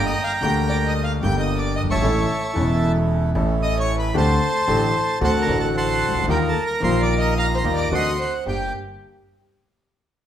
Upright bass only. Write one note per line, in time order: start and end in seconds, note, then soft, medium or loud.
0.00 0.11 G1 loud
0.42 1.19 D2 medium
1.23 1.82 G1 loud
1.83 1.89 F#1 soft
1.90 1.95 G1 medium
1.96 2.02 G#1 medium
2.02 2.25 A1 loud
2.56 3.31 E1 loud
3.35 4.10 A1 loud
4.15 4.37 D2 loud
4.68 4.90 A1 loud
5.21 5.44 D2 loud
5.48 6.08 A1 loud
6.08 6.14 C2 soft
6.15 6.21 C#2 medium
6.22 6.27 D2 medium
6.28 6.51 D#2 loud
6.82 7.60 A#1 loud
7.64 7.87 D#2 medium
7.91 8.14 D2 medium
8.46 8.69 G1 medium